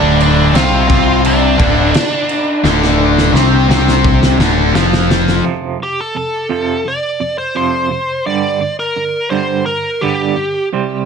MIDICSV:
0, 0, Header, 1, 6, 480
1, 0, Start_track
1, 0, Key_signature, -1, "minor"
1, 0, Tempo, 701754
1, 1809, Time_signature, 4, 2, 24, 8
1, 7560, End_track
2, 0, Start_track
2, 0, Title_t, "Lead electric guitar"
2, 0, Program_c, 0, 29
2, 0, Note_on_c, 0, 62, 78
2, 0, Note_on_c, 0, 74, 91
2, 119, Note_off_c, 0, 62, 0
2, 145, Note_off_c, 0, 74, 0
2, 148, Note_on_c, 0, 62, 70
2, 152, Note_on_c, 0, 74, 94
2, 365, Note_off_c, 0, 62, 0
2, 381, Note_on_c, 0, 65, 65
2, 384, Note_on_c, 0, 77, 74
2, 390, Note_off_c, 0, 74, 0
2, 829, Note_off_c, 0, 65, 0
2, 829, Note_off_c, 0, 77, 0
2, 864, Note_on_c, 0, 62, 69
2, 870, Note_on_c, 0, 74, 70
2, 2354, Note_off_c, 0, 74, 0
2, 2354, Note_on_c, 0, 72, 70
2, 3226, Note_off_c, 0, 62, 0
2, 3227, Note_off_c, 0, 72, 0
2, 3988, Note_on_c, 0, 67, 79
2, 4107, Note_off_c, 0, 67, 0
2, 4107, Note_on_c, 0, 69, 80
2, 4214, Note_off_c, 0, 69, 0
2, 4223, Note_on_c, 0, 69, 67
2, 4705, Note_on_c, 0, 74, 94
2, 4709, Note_off_c, 0, 69, 0
2, 5032, Note_off_c, 0, 74, 0
2, 5049, Note_on_c, 0, 72, 73
2, 5160, Note_off_c, 0, 72, 0
2, 5174, Note_on_c, 0, 72, 83
2, 5650, Note_off_c, 0, 72, 0
2, 5653, Note_on_c, 0, 74, 93
2, 5987, Note_off_c, 0, 74, 0
2, 6016, Note_on_c, 0, 70, 91
2, 6361, Note_off_c, 0, 70, 0
2, 6364, Note_on_c, 0, 72, 80
2, 6591, Note_off_c, 0, 72, 0
2, 6606, Note_on_c, 0, 70, 71
2, 6849, Note_on_c, 0, 67, 76
2, 6857, Note_off_c, 0, 70, 0
2, 7305, Note_off_c, 0, 67, 0
2, 7560, End_track
3, 0, Start_track
3, 0, Title_t, "Overdriven electric guitar"
3, 0, Program_c, 1, 29
3, 0, Note_on_c, 1, 38, 98
3, 0, Note_on_c, 1, 50, 106
3, 359, Note_off_c, 1, 38, 0
3, 362, Note_on_c, 1, 48, 90
3, 364, Note_off_c, 1, 50, 0
3, 368, Note_on_c, 1, 60, 88
3, 600, Note_off_c, 1, 48, 0
3, 603, Note_off_c, 1, 60, 0
3, 608, Note_on_c, 1, 48, 87
3, 612, Note_on_c, 1, 60, 91
3, 1073, Note_off_c, 1, 48, 0
3, 1076, Note_on_c, 1, 38, 93
3, 1081, Note_off_c, 1, 60, 0
3, 1084, Note_on_c, 1, 50, 98
3, 1316, Note_off_c, 1, 38, 0
3, 1320, Note_off_c, 1, 50, 0
3, 1802, Note_on_c, 1, 38, 104
3, 1810, Note_on_c, 1, 50, 119
3, 2273, Note_off_c, 1, 38, 0
3, 2275, Note_on_c, 1, 48, 94
3, 2278, Note_off_c, 1, 50, 0
3, 2280, Note_on_c, 1, 60, 108
3, 2514, Note_off_c, 1, 48, 0
3, 2517, Note_off_c, 1, 60, 0
3, 2524, Note_on_c, 1, 48, 85
3, 2528, Note_on_c, 1, 60, 114
3, 2998, Note_off_c, 1, 48, 0
3, 3000, Note_off_c, 1, 60, 0
3, 3009, Note_on_c, 1, 38, 92
3, 3010, Note_on_c, 1, 50, 98
3, 3240, Note_off_c, 1, 38, 0
3, 3241, Note_off_c, 1, 50, 0
3, 3246, Note_on_c, 1, 41, 88
3, 3250, Note_on_c, 1, 53, 103
3, 3719, Note_off_c, 1, 41, 0
3, 3721, Note_off_c, 1, 53, 0
3, 7560, End_track
4, 0, Start_track
4, 0, Title_t, "Clean electric guitar"
4, 0, Program_c, 2, 27
4, 3720, Note_on_c, 2, 41, 72
4, 3723, Note_on_c, 2, 48, 86
4, 3726, Note_on_c, 2, 53, 91
4, 3949, Note_off_c, 2, 41, 0
4, 3950, Note_off_c, 2, 48, 0
4, 3952, Note_off_c, 2, 53, 0
4, 3967, Note_on_c, 2, 41, 59
4, 4183, Note_off_c, 2, 41, 0
4, 4205, Note_on_c, 2, 41, 71
4, 4209, Note_on_c, 2, 48, 75
4, 4422, Note_off_c, 2, 41, 0
4, 4424, Note_off_c, 2, 48, 0
4, 4442, Note_on_c, 2, 41, 88
4, 4444, Note_on_c, 2, 48, 74
4, 4448, Note_on_c, 2, 53, 95
4, 4670, Note_off_c, 2, 41, 0
4, 4672, Note_off_c, 2, 48, 0
4, 4673, Note_off_c, 2, 53, 0
4, 4687, Note_on_c, 2, 41, 69
4, 4691, Note_on_c, 2, 48, 74
4, 4903, Note_off_c, 2, 41, 0
4, 4905, Note_off_c, 2, 48, 0
4, 4925, Note_on_c, 2, 41, 70
4, 4927, Note_on_c, 2, 48, 76
4, 5143, Note_off_c, 2, 41, 0
4, 5144, Note_off_c, 2, 48, 0
4, 5164, Note_on_c, 2, 41, 82
4, 5167, Note_on_c, 2, 48, 74
4, 5170, Note_on_c, 2, 53, 82
4, 5392, Note_off_c, 2, 41, 0
4, 5394, Note_off_c, 2, 48, 0
4, 5395, Note_off_c, 2, 53, 0
4, 5408, Note_on_c, 2, 41, 68
4, 5412, Note_on_c, 2, 48, 71
4, 5625, Note_off_c, 2, 41, 0
4, 5627, Note_off_c, 2, 48, 0
4, 5651, Note_on_c, 2, 43, 82
4, 5653, Note_on_c, 2, 50, 79
4, 5655, Note_on_c, 2, 55, 90
4, 5877, Note_off_c, 2, 43, 0
4, 5878, Note_off_c, 2, 50, 0
4, 5879, Note_off_c, 2, 55, 0
4, 5888, Note_on_c, 2, 43, 67
4, 5891, Note_on_c, 2, 50, 75
4, 6106, Note_off_c, 2, 43, 0
4, 6107, Note_off_c, 2, 50, 0
4, 6131, Note_on_c, 2, 43, 67
4, 6134, Note_on_c, 2, 50, 75
4, 6347, Note_off_c, 2, 43, 0
4, 6349, Note_off_c, 2, 50, 0
4, 6368, Note_on_c, 2, 43, 71
4, 6373, Note_on_c, 2, 50, 86
4, 6375, Note_on_c, 2, 55, 85
4, 6596, Note_off_c, 2, 43, 0
4, 6598, Note_off_c, 2, 50, 0
4, 6600, Note_off_c, 2, 55, 0
4, 6612, Note_on_c, 2, 43, 74
4, 6829, Note_off_c, 2, 43, 0
4, 6856, Note_on_c, 2, 43, 99
4, 6860, Note_on_c, 2, 50, 103
4, 6861, Note_on_c, 2, 55, 99
4, 7081, Note_off_c, 2, 43, 0
4, 7083, Note_off_c, 2, 50, 0
4, 7084, Note_off_c, 2, 55, 0
4, 7093, Note_on_c, 2, 43, 68
4, 7310, Note_off_c, 2, 43, 0
4, 7336, Note_on_c, 2, 48, 90
4, 7340, Note_on_c, 2, 55, 92
4, 7340, Note_on_c, 2, 60, 96
4, 7560, Note_off_c, 2, 48, 0
4, 7560, Note_off_c, 2, 55, 0
4, 7560, Note_off_c, 2, 60, 0
4, 7560, End_track
5, 0, Start_track
5, 0, Title_t, "Picked electric bass"
5, 0, Program_c, 3, 34
5, 0, Note_on_c, 3, 26, 103
5, 347, Note_off_c, 3, 26, 0
5, 371, Note_on_c, 3, 36, 98
5, 595, Note_off_c, 3, 36, 0
5, 612, Note_on_c, 3, 36, 96
5, 1064, Note_off_c, 3, 36, 0
5, 1089, Note_on_c, 3, 26, 89
5, 1313, Note_off_c, 3, 26, 0
5, 1806, Note_on_c, 3, 26, 102
5, 2259, Note_off_c, 3, 26, 0
5, 2282, Note_on_c, 3, 36, 104
5, 2507, Note_off_c, 3, 36, 0
5, 2520, Note_on_c, 3, 36, 105
5, 2976, Note_off_c, 3, 36, 0
5, 3002, Note_on_c, 3, 26, 91
5, 3227, Note_off_c, 3, 26, 0
5, 3238, Note_on_c, 3, 29, 86
5, 3695, Note_off_c, 3, 29, 0
5, 7560, End_track
6, 0, Start_track
6, 0, Title_t, "Drums"
6, 140, Note_on_c, 9, 49, 60
6, 208, Note_off_c, 9, 49, 0
6, 376, Note_on_c, 9, 49, 80
6, 384, Note_on_c, 9, 38, 104
6, 445, Note_off_c, 9, 49, 0
6, 453, Note_off_c, 9, 38, 0
6, 614, Note_on_c, 9, 36, 116
6, 614, Note_on_c, 9, 49, 62
6, 682, Note_off_c, 9, 36, 0
6, 682, Note_off_c, 9, 49, 0
6, 852, Note_on_c, 9, 49, 89
6, 920, Note_off_c, 9, 49, 0
6, 1091, Note_on_c, 9, 49, 61
6, 1092, Note_on_c, 9, 36, 109
6, 1159, Note_off_c, 9, 49, 0
6, 1160, Note_off_c, 9, 36, 0
6, 1329, Note_on_c, 9, 49, 87
6, 1337, Note_on_c, 9, 38, 123
6, 1397, Note_off_c, 9, 49, 0
6, 1405, Note_off_c, 9, 38, 0
6, 1568, Note_on_c, 9, 49, 64
6, 1636, Note_off_c, 9, 49, 0
6, 1811, Note_on_c, 9, 38, 66
6, 1880, Note_off_c, 9, 38, 0
6, 1935, Note_on_c, 9, 38, 50
6, 2003, Note_off_c, 9, 38, 0
6, 2177, Note_on_c, 9, 38, 67
6, 2246, Note_off_c, 9, 38, 0
6, 2295, Note_on_c, 9, 38, 75
6, 2363, Note_off_c, 9, 38, 0
6, 2537, Note_on_c, 9, 38, 90
6, 2606, Note_off_c, 9, 38, 0
6, 2656, Note_on_c, 9, 38, 74
6, 2724, Note_off_c, 9, 38, 0
6, 2767, Note_on_c, 9, 36, 110
6, 2835, Note_off_c, 9, 36, 0
6, 2893, Note_on_c, 9, 38, 83
6, 2961, Note_off_c, 9, 38, 0
6, 3011, Note_on_c, 9, 38, 98
6, 3079, Note_off_c, 9, 38, 0
6, 3252, Note_on_c, 9, 38, 113
6, 3320, Note_off_c, 9, 38, 0
6, 3375, Note_on_c, 9, 38, 95
6, 3444, Note_off_c, 9, 38, 0
6, 3495, Note_on_c, 9, 38, 118
6, 3563, Note_off_c, 9, 38, 0
6, 3613, Note_on_c, 9, 38, 94
6, 3681, Note_off_c, 9, 38, 0
6, 7560, End_track
0, 0, End_of_file